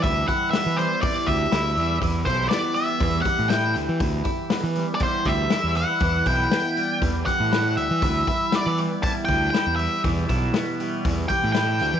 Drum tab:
HH |oooooooo|oooooooo|oooooooo|oooooooo|
SD |--o---o-|--o---o-|--o--oo-|--o--oo-|
BD |oo--oo--|oo--oo--|oo--oo--|oo--oo--|

HH |oooooooo|oooooooo|
SD |--o---o-|--o---o-|
BD |oo--oo--|oo--oo--|